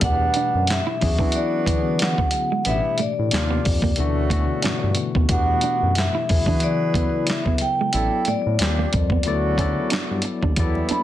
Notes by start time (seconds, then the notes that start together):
0.01 E2 B2 E3 G3 A3 B3 D4 G4 F#5, kick, closed hi-hat
0.34 D4, closed hi-hat
0.55 F#2
0.67 E5, snare, closed hi-hat
0.71 clap
0.87 E4
1.01 E2 F#3 B3 C#4 D4 E4 F#4 G#4, muted clean electric guitar stroke, kick, open hi-hat
1.19 E3 D4, kick
1.32 D5, closed hi-hat
1.66 D3 F#3 B3 E4 F#4, kick, closed hi-hat
1.76 G#4
1.99 F#5, snare, closed hi-hat
2.03 clap
2.18 B3, kick
2.31 muted clean electric guitar stroke, closed hi-hat
2.52 G#3
2.65 A1 B2 E3 G3 A3 B3 D4 E4 F#4 E5, closed hi-hat
2.75 G4
2.98 A2 A3 D5, closed hi-hat
3.19 A2
3.31 D#2 C3 F3 A#3 D4 D#4 F4 G4, snare, closed hi-hat
3.35 clap
3.50 B3
3.65 F2, muted clean electric guitar stroke, kick, open hi-hat
3.82 A#3, kick
3.96 D2 B2 C#3 E3 A3 D4 F#4, closed hi-hat
4.00 F#4
4.30 B2 D3 E3 A3 F#4, kick, closed hi-hat
4.62 G2 C#4, snare, closed hi-hat
4.67 clap
4.84 G2
4.95 muted clean electric guitar stroke, closed hi-hat
5.15 D#2 B3, kick
5.29 E2 B2 E3 A3 B3 D4 F#4 G4 F#5, kick, closed hi-hat
5.61 D4, closed hi-hat
5.83 F#2
5.95 E5, snare, closed hi-hat
5.99 clap
6.15 E4
6.28 E2 C#3 F#3 B3 E4 F#4 G#4 B4, muted clean electric guitar stroke, kick, open hi-hat
6.46 E3 D4, kick
6.60 D5, closed hi-hat
6.94 C#3 F#3 B3 E4 A4, kick, closed hi-hat
7.03 B4
7.27 E5, snare, closed hi-hat
7.31 clap
7.46 B3, kick
7.58 G5, muted clean electric guitar stroke, closed hi-hat
7.81 G#3
7.93 A1 F#3 B3 D4 E4 A4 D5, closed hi-hat
8.25 A2 A3 D5, closed hi-hat
8.46 A2
8.59 D#2 G3 A#3 C4 D4 F4 G4 A#4 D5, snare, closed hi-hat
8.63 clap
8.79 A#3
8.93 F2, muted clean electric guitar stroke, kick, closed hi-hat
9.10 B3, kick
9.23 D2 C#3 F#3 A3 B3 E4 F#4 A4, closed hi-hat
9.28 D5
9.58 F#3 B3 C#4 E4 A4 D5, kick, closed hi-hat
9.90 G2 D4, snare, closed hi-hat
9.94 clap
10.11 G2
10.22 muted clean electric guitar stroke, closed hi-hat
10.43 D#2 D4, kick
10.56 E2 F#3 G3 B3 E4 A4 D5, kick, closed hi-hat, muted conga, low conga
10.75 muted conga
10.89 D4 B5, closed hi-hat, high conga